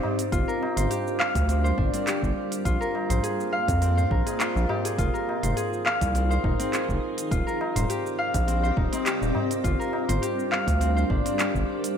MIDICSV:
0, 0, Header, 1, 7, 480
1, 0, Start_track
1, 0, Tempo, 582524
1, 267, Time_signature, 4, 2, 24, 8
1, 9868, End_track
2, 0, Start_track
2, 0, Title_t, "Singing bowl"
2, 0, Program_c, 0, 14
2, 4108, Note_on_c, 0, 70, 79
2, 9868, Note_off_c, 0, 70, 0
2, 9868, End_track
3, 0, Start_track
3, 0, Title_t, "Ambient pad"
3, 0, Program_c, 1, 92
3, 0, Note_on_c, 1, 60, 87
3, 0, Note_on_c, 1, 67, 81
3, 0, Note_on_c, 1, 74, 76
3, 0, Note_on_c, 1, 75, 93
3, 247, Note_off_c, 1, 75, 0
3, 248, Note_off_c, 1, 60, 0
3, 248, Note_off_c, 1, 74, 0
3, 270, Note_on_c, 1, 55, 86
3, 270, Note_on_c, 1, 62, 81
3, 270, Note_on_c, 1, 70, 96
3, 2154, Note_off_c, 1, 67, 0
3, 2169, Note_off_c, 1, 55, 0
3, 2169, Note_off_c, 1, 62, 0
3, 2169, Note_off_c, 1, 70, 0
3, 2186, Note_on_c, 1, 74, 88
3, 2187, Note_on_c, 1, 58, 85
3, 2187, Note_on_c, 1, 65, 74
3, 2188, Note_on_c, 1, 72, 81
3, 4087, Note_off_c, 1, 74, 0
3, 4088, Note_off_c, 1, 58, 0
3, 4088, Note_off_c, 1, 72, 0
3, 4104, Note_on_c, 1, 63, 86
3, 4105, Note_on_c, 1, 68, 94
3, 5994, Note_off_c, 1, 65, 0
3, 6006, Note_off_c, 1, 63, 0
3, 6007, Note_off_c, 1, 68, 0
3, 6025, Note_on_c, 1, 60, 81
3, 6025, Note_on_c, 1, 67, 77
3, 6026, Note_on_c, 1, 74, 75
3, 6026, Note_on_c, 1, 75, 94
3, 7927, Note_off_c, 1, 60, 0
3, 7927, Note_off_c, 1, 67, 0
3, 7927, Note_off_c, 1, 74, 0
3, 7927, Note_off_c, 1, 75, 0
3, 7945, Note_on_c, 1, 62, 79
3, 7947, Note_on_c, 1, 55, 85
3, 7947, Note_on_c, 1, 67, 84
3, 7948, Note_on_c, 1, 70, 91
3, 9847, Note_off_c, 1, 62, 0
3, 9848, Note_off_c, 1, 55, 0
3, 9848, Note_off_c, 1, 67, 0
3, 9848, Note_off_c, 1, 70, 0
3, 9868, End_track
4, 0, Start_track
4, 0, Title_t, "Harp"
4, 0, Program_c, 2, 46
4, 0, Note_on_c, 2, 60, 104
4, 0, Note_on_c, 2, 63, 70
4, 0, Note_on_c, 2, 65, 96
4, 0, Note_on_c, 2, 67, 78
4, 0, Note_on_c, 2, 70, 75
4, 0, Note_on_c, 2, 72, 78
4, 0, Note_on_c, 2, 77, 100
4, 221, Note_off_c, 2, 70, 0
4, 262, Note_off_c, 2, 65, 0
4, 265, Note_on_c, 2, 65, 102
4, 394, Note_on_c, 2, 70, 77
4, 437, Note_off_c, 2, 77, 0
4, 630, Note_off_c, 2, 72, 0
4, 633, Note_on_c, 2, 72, 74
4, 741, Note_off_c, 2, 67, 0
4, 744, Note_on_c, 2, 67, 81
4, 984, Note_on_c, 2, 77, 102
4, 1221, Note_off_c, 2, 60, 0
4, 1224, Note_on_c, 2, 60, 92
4, 1349, Note_off_c, 2, 72, 0
4, 1352, Note_on_c, 2, 72, 78
4, 1463, Note_on_c, 2, 62, 79
4, 1512, Note_off_c, 2, 63, 0
4, 1589, Note_off_c, 2, 60, 0
4, 1593, Note_on_c, 2, 60, 97
4, 1700, Note_off_c, 2, 67, 0
4, 1703, Note_on_c, 2, 67, 82
4, 2142, Note_off_c, 2, 70, 0
4, 2181, Note_off_c, 2, 65, 0
4, 2184, Note_on_c, 2, 65, 99
4, 2312, Note_on_c, 2, 70, 74
4, 2356, Note_off_c, 2, 77, 0
4, 2549, Note_off_c, 2, 72, 0
4, 2552, Note_on_c, 2, 72, 73
4, 2664, Note_on_c, 2, 68, 83
4, 2714, Note_off_c, 2, 67, 0
4, 2905, Note_on_c, 2, 77, 97
4, 3142, Note_off_c, 2, 60, 0
4, 3145, Note_on_c, 2, 60, 97
4, 3270, Note_off_c, 2, 72, 0
4, 3274, Note_on_c, 2, 72, 83
4, 3382, Note_off_c, 2, 70, 0
4, 3385, Note_on_c, 2, 70, 76
4, 3509, Note_off_c, 2, 68, 0
4, 3513, Note_on_c, 2, 68, 75
4, 3620, Note_off_c, 2, 65, 0
4, 3624, Note_on_c, 2, 65, 96
4, 3769, Note_off_c, 2, 62, 0
4, 3865, Note_on_c, 2, 67, 79
4, 3915, Note_off_c, 2, 68, 0
4, 3994, Note_on_c, 2, 68, 71
4, 4044, Note_off_c, 2, 67, 0
4, 4103, Note_off_c, 2, 65, 0
4, 4106, Note_on_c, 2, 65, 100
4, 4230, Note_off_c, 2, 70, 0
4, 4234, Note_on_c, 2, 70, 69
4, 4276, Note_off_c, 2, 77, 0
4, 4471, Note_off_c, 2, 72, 0
4, 4475, Note_on_c, 2, 72, 69
4, 4583, Note_off_c, 2, 68, 0
4, 4586, Note_on_c, 2, 68, 82
4, 4826, Note_on_c, 2, 77, 107
4, 5063, Note_off_c, 2, 60, 0
4, 5066, Note_on_c, 2, 60, 91
4, 5192, Note_off_c, 2, 72, 0
4, 5195, Note_on_c, 2, 72, 82
4, 5306, Note_on_c, 2, 63, 76
4, 5431, Note_off_c, 2, 60, 0
4, 5434, Note_on_c, 2, 60, 99
4, 5542, Note_off_c, 2, 68, 0
4, 5545, Note_on_c, 2, 68, 80
4, 5982, Note_off_c, 2, 70, 0
4, 6021, Note_off_c, 2, 65, 0
4, 6025, Note_on_c, 2, 65, 99
4, 6153, Note_on_c, 2, 70, 73
4, 6197, Note_off_c, 2, 77, 0
4, 6388, Note_off_c, 2, 72, 0
4, 6392, Note_on_c, 2, 72, 72
4, 6505, Note_on_c, 2, 67, 81
4, 6554, Note_off_c, 2, 68, 0
4, 6745, Note_on_c, 2, 77, 101
4, 6980, Note_off_c, 2, 60, 0
4, 6983, Note_on_c, 2, 60, 95
4, 7110, Note_off_c, 2, 72, 0
4, 7114, Note_on_c, 2, 72, 83
4, 7221, Note_off_c, 2, 63, 0
4, 7224, Note_on_c, 2, 63, 77
4, 7349, Note_off_c, 2, 60, 0
4, 7353, Note_on_c, 2, 60, 107
4, 7460, Note_off_c, 2, 67, 0
4, 7463, Note_on_c, 2, 67, 84
4, 7901, Note_off_c, 2, 70, 0
4, 7939, Note_off_c, 2, 65, 0
4, 7943, Note_on_c, 2, 65, 106
4, 8071, Note_on_c, 2, 70, 79
4, 8116, Note_off_c, 2, 77, 0
4, 8308, Note_off_c, 2, 72, 0
4, 8312, Note_on_c, 2, 72, 80
4, 8419, Note_off_c, 2, 67, 0
4, 8422, Note_on_c, 2, 67, 82
4, 8664, Note_on_c, 2, 77, 99
4, 8900, Note_off_c, 2, 60, 0
4, 8904, Note_on_c, 2, 60, 99
4, 9032, Note_off_c, 2, 72, 0
4, 9035, Note_on_c, 2, 72, 83
4, 9145, Note_on_c, 2, 62, 78
4, 9195, Note_off_c, 2, 63, 0
4, 9270, Note_off_c, 2, 60, 0
4, 9274, Note_on_c, 2, 60, 104
4, 9382, Note_off_c, 2, 67, 0
4, 9385, Note_on_c, 2, 67, 81
4, 9819, Note_off_c, 2, 70, 0
4, 9862, Note_off_c, 2, 65, 0
4, 9868, Note_off_c, 2, 60, 0
4, 9868, Note_off_c, 2, 62, 0
4, 9868, Note_off_c, 2, 67, 0
4, 9868, Note_off_c, 2, 72, 0
4, 9868, Note_off_c, 2, 77, 0
4, 9868, End_track
5, 0, Start_track
5, 0, Title_t, "Analog synth bass"
5, 0, Program_c, 3, 38
5, 266, Note_on_c, 3, 31, 95
5, 361, Note_off_c, 3, 31, 0
5, 633, Note_on_c, 3, 31, 81
5, 716, Note_off_c, 3, 31, 0
5, 1114, Note_on_c, 3, 38, 96
5, 1419, Note_off_c, 3, 38, 0
5, 1466, Note_on_c, 3, 31, 89
5, 1561, Note_off_c, 3, 31, 0
5, 1834, Note_on_c, 3, 31, 99
5, 1917, Note_off_c, 3, 31, 0
5, 2186, Note_on_c, 3, 34, 95
5, 2281, Note_off_c, 3, 34, 0
5, 2554, Note_on_c, 3, 34, 77
5, 2637, Note_off_c, 3, 34, 0
5, 3033, Note_on_c, 3, 41, 89
5, 3339, Note_off_c, 3, 41, 0
5, 3386, Note_on_c, 3, 34, 93
5, 3481, Note_off_c, 3, 34, 0
5, 3755, Note_on_c, 3, 34, 99
5, 3838, Note_off_c, 3, 34, 0
5, 4107, Note_on_c, 3, 29, 88
5, 4202, Note_off_c, 3, 29, 0
5, 4477, Note_on_c, 3, 29, 82
5, 4558, Note_off_c, 3, 29, 0
5, 4955, Note_on_c, 3, 36, 98
5, 5260, Note_off_c, 3, 36, 0
5, 5306, Note_on_c, 3, 29, 103
5, 5401, Note_off_c, 3, 29, 0
5, 5676, Note_on_c, 3, 29, 101
5, 5758, Note_off_c, 3, 29, 0
5, 6026, Note_on_c, 3, 27, 89
5, 6121, Note_off_c, 3, 27, 0
5, 6393, Note_on_c, 3, 27, 83
5, 6477, Note_off_c, 3, 27, 0
5, 6875, Note_on_c, 3, 34, 95
5, 7180, Note_off_c, 3, 34, 0
5, 7227, Note_on_c, 3, 27, 100
5, 7321, Note_off_c, 3, 27, 0
5, 7596, Note_on_c, 3, 27, 99
5, 7678, Note_off_c, 3, 27, 0
5, 7946, Note_on_c, 3, 31, 94
5, 8041, Note_off_c, 3, 31, 0
5, 8314, Note_on_c, 3, 31, 81
5, 8397, Note_off_c, 3, 31, 0
5, 8795, Note_on_c, 3, 38, 86
5, 9100, Note_off_c, 3, 38, 0
5, 9146, Note_on_c, 3, 31, 94
5, 9241, Note_off_c, 3, 31, 0
5, 9514, Note_on_c, 3, 31, 100
5, 9597, Note_off_c, 3, 31, 0
5, 9868, End_track
6, 0, Start_track
6, 0, Title_t, "Tabla"
6, 28, Note_on_c, 9, 60, 72
6, 37, Note_on_c, 9, 64, 96
6, 110, Note_off_c, 9, 60, 0
6, 120, Note_off_c, 9, 64, 0
6, 509, Note_on_c, 9, 63, 52
6, 516, Note_on_c, 9, 60, 92
6, 592, Note_off_c, 9, 63, 0
6, 599, Note_off_c, 9, 60, 0
6, 635, Note_on_c, 9, 64, 87
6, 717, Note_off_c, 9, 64, 0
6, 1466, Note_on_c, 9, 63, 57
6, 1466, Note_on_c, 9, 64, 68
6, 1548, Note_off_c, 9, 63, 0
6, 1549, Note_off_c, 9, 64, 0
6, 2423, Note_on_c, 9, 63, 51
6, 2430, Note_on_c, 9, 60, 73
6, 2505, Note_off_c, 9, 63, 0
6, 2513, Note_off_c, 9, 60, 0
6, 2554, Note_on_c, 9, 60, 61
6, 2560, Note_on_c, 9, 64, 86
6, 2636, Note_off_c, 9, 60, 0
6, 2642, Note_off_c, 9, 64, 0
6, 3045, Note_on_c, 9, 60, 36
6, 3127, Note_off_c, 9, 60, 0
6, 3283, Note_on_c, 9, 64, 78
6, 3365, Note_off_c, 9, 64, 0
6, 3388, Note_on_c, 9, 63, 50
6, 3470, Note_off_c, 9, 63, 0
6, 3517, Note_on_c, 9, 60, 64
6, 3599, Note_off_c, 9, 60, 0
6, 3757, Note_on_c, 9, 63, 49
6, 3839, Note_off_c, 9, 63, 0
6, 3867, Note_on_c, 9, 64, 89
6, 3868, Note_on_c, 9, 60, 85
6, 3949, Note_off_c, 9, 64, 0
6, 3951, Note_off_c, 9, 60, 0
6, 4346, Note_on_c, 9, 63, 50
6, 4359, Note_on_c, 9, 60, 65
6, 4428, Note_off_c, 9, 63, 0
6, 4441, Note_off_c, 9, 60, 0
6, 4478, Note_on_c, 9, 64, 85
6, 4561, Note_off_c, 9, 64, 0
6, 5311, Note_on_c, 9, 63, 56
6, 5314, Note_on_c, 9, 64, 83
6, 5393, Note_off_c, 9, 63, 0
6, 5396, Note_off_c, 9, 64, 0
6, 6270, Note_on_c, 9, 60, 81
6, 6270, Note_on_c, 9, 63, 51
6, 6352, Note_off_c, 9, 63, 0
6, 6353, Note_off_c, 9, 60, 0
6, 6395, Note_on_c, 9, 64, 100
6, 6478, Note_off_c, 9, 64, 0
6, 6877, Note_on_c, 9, 60, 37
6, 6959, Note_off_c, 9, 60, 0
6, 7220, Note_on_c, 9, 63, 58
6, 7303, Note_off_c, 9, 63, 0
6, 7360, Note_on_c, 9, 60, 61
6, 7443, Note_off_c, 9, 60, 0
6, 7592, Note_on_c, 9, 63, 48
6, 7674, Note_off_c, 9, 63, 0
6, 7703, Note_on_c, 9, 60, 73
6, 7709, Note_on_c, 9, 64, 89
6, 7785, Note_off_c, 9, 60, 0
6, 7791, Note_off_c, 9, 64, 0
6, 8183, Note_on_c, 9, 60, 74
6, 8189, Note_on_c, 9, 63, 53
6, 8266, Note_off_c, 9, 60, 0
6, 8271, Note_off_c, 9, 63, 0
6, 8315, Note_on_c, 9, 64, 92
6, 8398, Note_off_c, 9, 64, 0
6, 9145, Note_on_c, 9, 64, 73
6, 9147, Note_on_c, 9, 63, 57
6, 9227, Note_off_c, 9, 64, 0
6, 9230, Note_off_c, 9, 63, 0
6, 9868, End_track
7, 0, Start_track
7, 0, Title_t, "Drums"
7, 155, Note_on_c, 9, 46, 58
7, 162, Note_on_c, 9, 82, 69
7, 238, Note_off_c, 9, 46, 0
7, 245, Note_off_c, 9, 82, 0
7, 265, Note_on_c, 9, 36, 123
7, 267, Note_on_c, 9, 46, 45
7, 274, Note_on_c, 9, 82, 60
7, 348, Note_off_c, 9, 36, 0
7, 350, Note_off_c, 9, 46, 0
7, 357, Note_off_c, 9, 82, 0
7, 404, Note_on_c, 9, 82, 35
7, 487, Note_off_c, 9, 82, 0
7, 636, Note_on_c, 9, 46, 59
7, 643, Note_on_c, 9, 82, 76
7, 719, Note_off_c, 9, 46, 0
7, 726, Note_off_c, 9, 82, 0
7, 748, Note_on_c, 9, 46, 44
7, 755, Note_on_c, 9, 82, 61
7, 831, Note_off_c, 9, 46, 0
7, 838, Note_off_c, 9, 82, 0
7, 884, Note_on_c, 9, 82, 35
7, 967, Note_off_c, 9, 82, 0
7, 988, Note_on_c, 9, 39, 77
7, 1071, Note_off_c, 9, 39, 0
7, 1114, Note_on_c, 9, 36, 104
7, 1116, Note_on_c, 9, 46, 52
7, 1123, Note_on_c, 9, 82, 65
7, 1197, Note_off_c, 9, 36, 0
7, 1198, Note_off_c, 9, 46, 0
7, 1206, Note_off_c, 9, 82, 0
7, 1228, Note_on_c, 9, 46, 43
7, 1235, Note_on_c, 9, 82, 58
7, 1310, Note_off_c, 9, 46, 0
7, 1317, Note_off_c, 9, 82, 0
7, 1363, Note_on_c, 9, 82, 37
7, 1445, Note_off_c, 9, 82, 0
7, 1466, Note_on_c, 9, 36, 111
7, 1548, Note_off_c, 9, 36, 0
7, 1596, Note_on_c, 9, 46, 53
7, 1603, Note_on_c, 9, 82, 65
7, 1678, Note_off_c, 9, 46, 0
7, 1685, Note_off_c, 9, 82, 0
7, 1707, Note_on_c, 9, 39, 80
7, 1707, Note_on_c, 9, 46, 41
7, 1715, Note_on_c, 9, 82, 58
7, 1790, Note_off_c, 9, 39, 0
7, 1790, Note_off_c, 9, 46, 0
7, 1797, Note_off_c, 9, 82, 0
7, 1834, Note_on_c, 9, 36, 58
7, 1844, Note_on_c, 9, 82, 34
7, 1917, Note_off_c, 9, 36, 0
7, 1927, Note_off_c, 9, 82, 0
7, 2075, Note_on_c, 9, 46, 52
7, 2083, Note_on_c, 9, 82, 73
7, 2158, Note_off_c, 9, 46, 0
7, 2165, Note_off_c, 9, 82, 0
7, 2185, Note_on_c, 9, 36, 120
7, 2187, Note_on_c, 9, 46, 44
7, 2194, Note_on_c, 9, 82, 64
7, 2268, Note_off_c, 9, 36, 0
7, 2270, Note_off_c, 9, 46, 0
7, 2277, Note_off_c, 9, 82, 0
7, 2323, Note_on_c, 9, 82, 34
7, 2406, Note_off_c, 9, 82, 0
7, 2556, Note_on_c, 9, 46, 53
7, 2564, Note_on_c, 9, 82, 69
7, 2639, Note_off_c, 9, 46, 0
7, 2646, Note_off_c, 9, 82, 0
7, 2668, Note_on_c, 9, 46, 46
7, 2675, Note_on_c, 9, 82, 61
7, 2750, Note_off_c, 9, 46, 0
7, 2757, Note_off_c, 9, 82, 0
7, 2804, Note_on_c, 9, 82, 34
7, 2886, Note_off_c, 9, 82, 0
7, 3034, Note_on_c, 9, 36, 101
7, 3036, Note_on_c, 9, 46, 51
7, 3043, Note_on_c, 9, 82, 62
7, 3116, Note_off_c, 9, 36, 0
7, 3118, Note_off_c, 9, 46, 0
7, 3125, Note_off_c, 9, 82, 0
7, 3146, Note_on_c, 9, 46, 43
7, 3153, Note_on_c, 9, 82, 55
7, 3229, Note_off_c, 9, 46, 0
7, 3236, Note_off_c, 9, 82, 0
7, 3283, Note_on_c, 9, 82, 35
7, 3365, Note_off_c, 9, 82, 0
7, 3386, Note_on_c, 9, 36, 112
7, 3468, Note_off_c, 9, 36, 0
7, 3516, Note_on_c, 9, 46, 50
7, 3523, Note_on_c, 9, 82, 66
7, 3598, Note_off_c, 9, 46, 0
7, 3606, Note_off_c, 9, 82, 0
7, 3627, Note_on_c, 9, 39, 72
7, 3627, Note_on_c, 9, 46, 41
7, 3634, Note_on_c, 9, 82, 57
7, 3709, Note_off_c, 9, 39, 0
7, 3709, Note_off_c, 9, 46, 0
7, 3716, Note_off_c, 9, 82, 0
7, 3764, Note_on_c, 9, 82, 34
7, 3847, Note_off_c, 9, 82, 0
7, 3997, Note_on_c, 9, 46, 54
7, 4004, Note_on_c, 9, 82, 73
7, 4079, Note_off_c, 9, 46, 0
7, 4087, Note_off_c, 9, 82, 0
7, 4106, Note_on_c, 9, 36, 120
7, 4108, Note_on_c, 9, 46, 46
7, 4115, Note_on_c, 9, 82, 59
7, 4189, Note_off_c, 9, 36, 0
7, 4191, Note_off_c, 9, 46, 0
7, 4198, Note_off_c, 9, 82, 0
7, 4243, Note_on_c, 9, 82, 32
7, 4326, Note_off_c, 9, 82, 0
7, 4478, Note_on_c, 9, 46, 52
7, 4485, Note_on_c, 9, 82, 69
7, 4560, Note_off_c, 9, 46, 0
7, 4567, Note_off_c, 9, 82, 0
7, 4590, Note_on_c, 9, 46, 44
7, 4597, Note_on_c, 9, 82, 57
7, 4672, Note_off_c, 9, 46, 0
7, 4679, Note_off_c, 9, 82, 0
7, 4724, Note_on_c, 9, 82, 33
7, 4807, Note_off_c, 9, 82, 0
7, 4828, Note_on_c, 9, 39, 69
7, 4911, Note_off_c, 9, 39, 0
7, 4955, Note_on_c, 9, 36, 99
7, 4955, Note_on_c, 9, 46, 51
7, 4963, Note_on_c, 9, 82, 67
7, 5037, Note_off_c, 9, 36, 0
7, 5038, Note_off_c, 9, 46, 0
7, 5045, Note_off_c, 9, 82, 0
7, 5067, Note_on_c, 9, 46, 41
7, 5074, Note_on_c, 9, 82, 57
7, 5150, Note_off_c, 9, 46, 0
7, 5157, Note_off_c, 9, 82, 0
7, 5203, Note_on_c, 9, 82, 34
7, 5286, Note_off_c, 9, 82, 0
7, 5307, Note_on_c, 9, 36, 113
7, 5389, Note_off_c, 9, 36, 0
7, 5436, Note_on_c, 9, 46, 51
7, 5443, Note_on_c, 9, 82, 67
7, 5518, Note_off_c, 9, 46, 0
7, 5525, Note_off_c, 9, 82, 0
7, 5549, Note_on_c, 9, 39, 70
7, 5549, Note_on_c, 9, 46, 40
7, 5556, Note_on_c, 9, 82, 56
7, 5631, Note_off_c, 9, 39, 0
7, 5631, Note_off_c, 9, 46, 0
7, 5638, Note_off_c, 9, 82, 0
7, 5675, Note_on_c, 9, 36, 63
7, 5684, Note_on_c, 9, 82, 34
7, 5758, Note_off_c, 9, 36, 0
7, 5767, Note_off_c, 9, 82, 0
7, 5916, Note_on_c, 9, 46, 52
7, 5923, Note_on_c, 9, 82, 72
7, 5998, Note_off_c, 9, 46, 0
7, 6005, Note_off_c, 9, 82, 0
7, 6027, Note_on_c, 9, 36, 115
7, 6028, Note_on_c, 9, 46, 44
7, 6035, Note_on_c, 9, 82, 57
7, 6109, Note_off_c, 9, 36, 0
7, 6111, Note_off_c, 9, 46, 0
7, 6118, Note_off_c, 9, 82, 0
7, 6164, Note_on_c, 9, 82, 34
7, 6246, Note_off_c, 9, 82, 0
7, 6396, Note_on_c, 9, 46, 59
7, 6403, Note_on_c, 9, 82, 64
7, 6478, Note_off_c, 9, 46, 0
7, 6486, Note_off_c, 9, 82, 0
7, 6508, Note_on_c, 9, 46, 48
7, 6515, Note_on_c, 9, 82, 56
7, 6591, Note_off_c, 9, 46, 0
7, 6598, Note_off_c, 9, 82, 0
7, 6644, Note_on_c, 9, 82, 33
7, 6727, Note_off_c, 9, 82, 0
7, 6875, Note_on_c, 9, 36, 96
7, 6875, Note_on_c, 9, 46, 55
7, 6882, Note_on_c, 9, 82, 64
7, 6957, Note_off_c, 9, 36, 0
7, 6957, Note_off_c, 9, 46, 0
7, 6965, Note_off_c, 9, 82, 0
7, 6988, Note_on_c, 9, 46, 44
7, 6995, Note_on_c, 9, 82, 55
7, 7070, Note_off_c, 9, 46, 0
7, 7078, Note_off_c, 9, 82, 0
7, 7124, Note_on_c, 9, 82, 34
7, 7206, Note_off_c, 9, 82, 0
7, 7226, Note_on_c, 9, 36, 106
7, 7309, Note_off_c, 9, 36, 0
7, 7356, Note_on_c, 9, 46, 53
7, 7363, Note_on_c, 9, 82, 62
7, 7438, Note_off_c, 9, 46, 0
7, 7445, Note_off_c, 9, 82, 0
7, 7467, Note_on_c, 9, 39, 71
7, 7467, Note_on_c, 9, 46, 45
7, 7475, Note_on_c, 9, 82, 53
7, 7550, Note_off_c, 9, 39, 0
7, 7550, Note_off_c, 9, 46, 0
7, 7557, Note_off_c, 9, 82, 0
7, 7603, Note_on_c, 9, 82, 32
7, 7685, Note_off_c, 9, 82, 0
7, 7835, Note_on_c, 9, 46, 59
7, 7843, Note_on_c, 9, 82, 67
7, 7918, Note_off_c, 9, 46, 0
7, 7925, Note_off_c, 9, 82, 0
7, 7946, Note_on_c, 9, 36, 109
7, 7948, Note_on_c, 9, 46, 48
7, 7955, Note_on_c, 9, 82, 55
7, 8028, Note_off_c, 9, 36, 0
7, 8030, Note_off_c, 9, 46, 0
7, 8037, Note_off_c, 9, 82, 0
7, 8084, Note_on_c, 9, 82, 32
7, 8166, Note_off_c, 9, 82, 0
7, 8316, Note_on_c, 9, 46, 59
7, 8323, Note_on_c, 9, 82, 67
7, 8398, Note_off_c, 9, 46, 0
7, 8406, Note_off_c, 9, 82, 0
7, 8428, Note_on_c, 9, 46, 50
7, 8435, Note_on_c, 9, 82, 57
7, 8511, Note_off_c, 9, 46, 0
7, 8518, Note_off_c, 9, 82, 0
7, 8565, Note_on_c, 9, 82, 32
7, 8647, Note_off_c, 9, 82, 0
7, 8670, Note_on_c, 9, 39, 81
7, 8753, Note_off_c, 9, 39, 0
7, 8795, Note_on_c, 9, 36, 97
7, 8798, Note_on_c, 9, 46, 56
7, 8805, Note_on_c, 9, 82, 65
7, 8877, Note_off_c, 9, 36, 0
7, 8881, Note_off_c, 9, 46, 0
7, 8888, Note_off_c, 9, 82, 0
7, 8909, Note_on_c, 9, 46, 44
7, 8916, Note_on_c, 9, 82, 50
7, 8991, Note_off_c, 9, 46, 0
7, 8998, Note_off_c, 9, 82, 0
7, 9044, Note_on_c, 9, 82, 33
7, 9126, Note_off_c, 9, 82, 0
7, 9146, Note_on_c, 9, 36, 110
7, 9228, Note_off_c, 9, 36, 0
7, 9277, Note_on_c, 9, 46, 53
7, 9284, Note_on_c, 9, 82, 61
7, 9359, Note_off_c, 9, 46, 0
7, 9366, Note_off_c, 9, 82, 0
7, 9388, Note_on_c, 9, 39, 77
7, 9388, Note_on_c, 9, 46, 44
7, 9395, Note_on_c, 9, 82, 51
7, 9470, Note_off_c, 9, 39, 0
7, 9470, Note_off_c, 9, 46, 0
7, 9477, Note_off_c, 9, 82, 0
7, 9514, Note_on_c, 9, 36, 55
7, 9524, Note_on_c, 9, 82, 33
7, 9597, Note_off_c, 9, 36, 0
7, 9607, Note_off_c, 9, 82, 0
7, 9757, Note_on_c, 9, 46, 59
7, 9764, Note_on_c, 9, 82, 66
7, 9839, Note_off_c, 9, 46, 0
7, 9846, Note_off_c, 9, 82, 0
7, 9868, End_track
0, 0, End_of_file